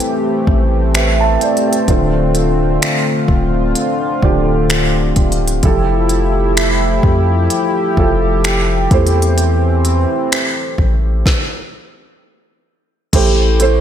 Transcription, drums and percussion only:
0.00 closed hi-hat medium
0.47 kick medium
0.95 finger snap loud
0.95 closed hi-hat medium
1.41 closed hi-hat medium
1.57 closed hi-hat medium
1.73 closed hi-hat medium
1.88 kick loud
1.88 closed hi-hat medium
2.35 closed hi-hat medium
2.82 finger snap loud
2.82 closed hi-hat medium
3.28 kick medium
3.75 closed hi-hat medium
4.23 kick medium
4.70 finger snap loud
4.70 closed hi-hat medium
5.16 kick medium
5.16 closed hi-hat medium
5.32 closed hi-hat medium
5.48 closed hi-hat medium
5.63 kick loud
5.63 closed hi-hat medium
6.09 closed hi-hat medium
6.57 finger snap loud
6.57 closed hi-hat medium
7.03 kick medium
7.50 closed hi-hat medium
7.97 kick medium
8.44 finger snap loud
8.44 closed hi-hat medium
8.91 kick loud
8.91 closed hi-hat medium
9.07 closed hi-hat medium
9.22 closed hi-hat medium
9.38 closed hi-hat medium
9.85 closed hi-hat medium
10.32 finger snap loud
10.32 closed hi-hat medium
10.78 kick medium
11.26 kick loud
11.26 snare medium
13.13 kick loud
13.13 closed hi-hat medium
13.13 crash loud
13.60 closed hi-hat medium

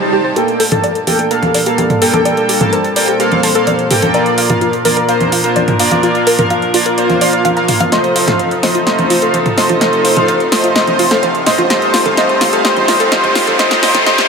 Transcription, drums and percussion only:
0.36 closed hi-hat medium
0.48 closed hi-hat soft
0.60 open hi-hat loud
0.72 closed hi-hat medium
0.72 mid tom medium
0.72 high conga medium
0.84 closed hi-hat medium
0.95 closed hi-hat soft
1.07 open hi-hat loud
1.07 high conga medium
1.19 closed hi-hat medium
1.31 closed hi-hat medium
1.43 closed hi-hat soft
1.43 high conga medium
1.54 open hi-hat loud
1.66 closed hi-hat medium
1.78 closed hi-hat medium
1.78 high conga medium
1.90 closed hi-hat soft
1.90 mid tom medium
2.02 open hi-hat loud
2.14 closed hi-hat medium
2.14 high conga medium
2.25 closed hi-hat medium
2.37 closed hi-hat soft
2.49 open hi-hat loud
2.61 closed hi-hat medium
2.61 mid tom medium
2.61 high conga medium
2.73 closed hi-hat medium
2.84 closed hi-hat soft
2.96 open hi-hat loud
3.08 closed hi-hat medium
3.20 closed hi-hat medium
3.32 closed hi-hat soft
3.32 high conga medium
3.43 open hi-hat loud
3.55 closed hi-hat medium
3.67 closed hi-hat medium
3.67 high conga medium
3.79 closed hi-hat soft
3.91 mid tom medium
3.91 open hi-hat loud
4.02 closed hi-hat medium
4.02 high conga medium
4.14 closed hi-hat soft
4.26 closed hi-hat soft
4.38 open hi-hat loud
4.50 closed hi-hat medium
4.50 mid tom medium
4.50 high conga medium
4.61 closed hi-hat soft
4.73 closed hi-hat soft
4.85 open hi-hat loud
4.85 high conga medium
4.97 closed hi-hat soft
5.09 closed hi-hat medium
5.21 closed hi-hat soft
5.21 high conga medium
5.32 open hi-hat loud
5.44 closed hi-hat soft
5.56 closed hi-hat medium
5.56 high conga medium
5.68 closed hi-hat soft
5.68 mid tom medium
5.79 open hi-hat loud
5.91 closed hi-hat soft
5.91 high conga medium
6.03 closed hi-hat soft
6.15 closed hi-hat soft
6.27 open hi-hat loud
6.39 closed hi-hat medium
6.39 mid tom medium
6.39 high conga medium
6.50 closed hi-hat soft
6.62 closed hi-hat soft
6.74 open hi-hat loud
6.86 closed hi-hat medium
6.98 closed hi-hat medium
7.10 closed hi-hat soft
7.10 high conga medium
7.21 open hi-hat loud
7.33 closed hi-hat soft
7.45 closed hi-hat medium
7.45 high conga medium
7.57 closed hi-hat soft
7.68 mid tom medium
7.68 open hi-hat loud
7.80 closed hi-hat soft
7.80 high conga medium
7.92 snare soft
7.92 closed hi-hat soft
8.04 closed hi-hat soft
8.16 open hi-hat loud
8.28 snare soft
8.28 closed hi-hat medium
8.28 mid tom medium
8.28 high conga medium
8.39 closed hi-hat soft
8.51 closed hi-hat soft
8.63 snare medium
8.63 open hi-hat loud
8.63 high conga medium
8.75 closed hi-hat medium
8.87 snare medium
8.87 closed hi-hat medium
8.99 closed hi-hat soft
8.99 high conga medium
9.10 open hi-hat loud
9.22 closed hi-hat medium
9.34 closed hi-hat medium
9.34 high conga medium
9.46 closed hi-hat soft
9.46 mid tom medium
9.58 snare medium
9.58 open hi-hat loud
9.69 closed hi-hat soft
9.69 high conga medium
9.81 snare medium
9.81 closed hi-hat medium
9.93 closed hi-hat soft
10.05 open hi-hat loud
10.17 closed hi-hat medium
10.17 mid tom medium
10.17 high conga medium
10.28 closed hi-hat medium
10.40 closed hi-hat soft
10.52 snare medium
10.52 open hi-hat loud
10.64 closed hi-hat medium
10.76 snare medium
10.76 closed hi-hat medium
10.87 closed hi-hat soft
10.87 high conga medium
10.99 open hi-hat loud
11.11 snare medium
11.11 closed hi-hat medium
11.23 closed hi-hat medium
11.23 high conga medium
11.35 closed hi-hat soft
11.46 snare medium
11.46 mid tom medium
11.46 open hi-hat loud
11.58 closed hi-hat medium
11.58 high conga medium
11.70 snare medium
11.70 closed hi-hat medium
11.82 closed hi-hat soft
11.94 snare medium
11.94 open hi-hat loud
12.06 closed hi-hat medium
12.06 mid tom medium
12.06 high conga medium
12.17 snare medium
12.17 closed hi-hat medium
12.29 closed hi-hat soft
12.41 snare medium
12.41 open hi-hat loud
12.41 high conga medium
12.53 closed hi-hat medium
12.65 snare medium
12.65 closed hi-hat medium
12.77 closed hi-hat soft
12.77 high conga medium
12.88 snare medium
12.88 open hi-hat loud
13.00 closed hi-hat medium
13.12 snare medium
13.12 closed hi-hat medium
13.12 high conga medium
13.24 closed hi-hat soft
13.24 mid tom medium
13.35 snare medium
13.35 open hi-hat loud
13.47 closed hi-hat medium
13.47 high conga medium
13.59 snare medium
13.59 closed hi-hat medium
13.71 snare medium
13.71 closed hi-hat soft
13.83 snare loud
13.83 open hi-hat loud
13.95 snare medium
13.95 closed hi-hat medium
13.95 mid tom medium
13.95 high conga medium
14.06 snare loud
14.06 closed hi-hat medium
14.18 snare medium
14.18 closed hi-hat soft

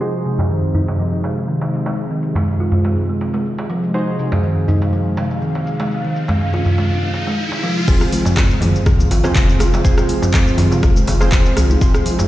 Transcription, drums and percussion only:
0.26 shaker medium
0.38 darbuka ka medium
0.38 darbuka tek medium
0.38 darbuka dum medium
0.50 shaker soft
0.74 darbuka dum medium
0.74 shaker medium
0.88 darbuka ka loud
0.88 shaker soft
1.00 shaker soft
1.24 darbuka ka medium
1.24 darbuka tek medium
1.24 shaker medium
1.37 shaker soft
1.49 shaker soft
1.61 darbuka ka loud
1.73 shaker medium
1.86 darbuka tek medium
1.86 shaker soft
1.98 shaker soft
2.22 shaker medium
2.35 darbuka ka medium
2.35 darbuka tek medium
2.35 darbuka dum medium
2.35 shaker soft
2.47 shaker soft
2.71 darbuka dum medium
2.71 shaker medium
2.85 darbuka ka medium
2.85 shaker soft
2.96 shaker soft
3.21 darbuka ka medium
3.21 shaker medium
3.34 darbuka tek medium
3.34 shaker soft
3.46 shaker soft
3.58 darbuka ka loud
3.70 shaker medium
3.83 shaker soft
3.95 shaker soft
4.19 shaker medium
4.32 darbuka ka medium
4.32 darbuka tek medium
4.32 darbuka dum medium
4.32 shaker soft
4.44 shaker soft
4.68 darbuka dum medium
4.68 shaker medium
4.82 darbuka ka medium
4.82 shaker soft
4.93 shaker soft
5.17 darbuka ka medium
5.17 darbuka tek medium
5.17 shaker medium
5.31 shaker soft
5.42 shaker soft
5.55 darbuka ka medium
5.67 shaker medium
5.80 darbuka tek medium
5.80 shaker soft
5.91 shaker soft
6.16 shaker medium
6.28 darbuka ka medium
6.28 darbuka tek medium
6.28 darbuka dum medium
6.28 shaker soft
6.41 shaker soft
6.54 darbuka tek medium
6.65 darbuka dum medium
6.65 shaker medium
6.78 darbuka ka loud
6.78 shaker soft
6.90 shaker soft
7.14 darbuka ka medium
7.14 shaker medium
7.27 darbuka tek soft
7.27 shaker soft
7.39 shaker soft
7.52 darbuka ka loud
7.64 shaker medium
7.77 shaker soft
7.88 kick loud
7.88 crash loud
7.88 shaker medium
8.01 cross-stick medium
8.01 shaker medium
8.12 open hi-hat loud
8.12 muted conga medium
8.12 high conga loud
8.12 shaker medium
8.25 darbuka tek medium
8.25 darbuka dum medium
8.25 shaker loud
8.37 kick loud
8.37 cross-stick medium
8.37 clap loud
8.37 muted conga soft
8.37 high conga loud
8.37 shaker medium
8.51 shaker medium
8.61 open hi-hat medium
8.61 mid tom medium
8.61 muted conga medium
8.61 high conga medium
8.61 low conga medium
8.61 darbuka dum loud
8.61 shaker soft
8.76 shaker medium
8.86 kick loud
8.86 cross-stick loud
8.86 mid tom medium
8.86 muted conga soft
8.86 shaker medium
8.99 low conga medium
8.99 shaker loud
9.11 open hi-hat medium
9.11 darbuka tek medium
9.11 shaker medium
9.24 cross-stick medium
9.24 darbuka ka medium
9.24 muted conga medium
9.24 low conga loud
9.24 shaker medium
9.35 kick loud
9.35 clap loud
9.35 shaker medium
9.48 muted conga soft
9.48 low conga loud
9.48 shaker medium
9.59 cross-stick loud
9.59 open hi-hat medium
9.59 darbuka ka medium
9.59 high conga medium
9.59 shaker loud
9.73 muted conga medium
9.73 high conga medium
9.73 darbuka tek medium
9.73 shaker medium
9.85 kick loud
9.85 shaker loud
9.98 cross-stick loud
9.98 darbuka ka medium
9.98 shaker medium
10.09 open hi-hat medium
10.09 muted conga medium
10.09 high conga loud
10.09 shaker medium
10.22 darbuka tek medium
10.22 darbuka dum medium
10.22 shaker loud
10.33 kick loud
10.33 cross-stick medium
10.33 clap medium
10.33 muted conga soft
10.33 high conga loud
10.33 shaker medium
10.47 shaker medium
10.58 open hi-hat medium
10.58 mid tom medium
10.58 muted conga medium
10.58 high conga medium
10.58 low conga loud
10.58 darbuka dum medium
10.58 shaker soft
10.71 darbuka ka medium
10.71 shaker medium
10.83 kick loud
10.83 cross-stick loud
10.83 muted conga soft
10.83 high conga medium
10.83 shaker medium
10.96 shaker medium
11.07 open hi-hat medium
11.07 darbuka ka loud
11.07 low conga loud
11.07 shaker medium
11.21 cross-stick medium
11.21 muted conga medium
11.21 darbuka tek medium
11.21 high conga medium
11.21 shaker medium
11.32 kick loud
11.32 clap loud
11.32 mid tom medium
11.32 low conga medium
11.32 shaker loud
11.46 muted conga soft
11.46 shaker medium
11.57 cross-stick loud
11.57 open hi-hat medium
11.57 mid tom medium
11.57 shaker loud
11.70 muted conga medium
11.70 high conga loud
11.70 shaker medium
11.81 kick loud
11.81 shaker loud
11.94 cross-stick loud
11.94 shaker medium
12.06 open hi-hat medium
12.06 muted conga medium
12.06 high conga loud
12.06 shaker medium
12.19 darbuka tek medium
12.19 darbuka dum medium
12.19 shaker loud

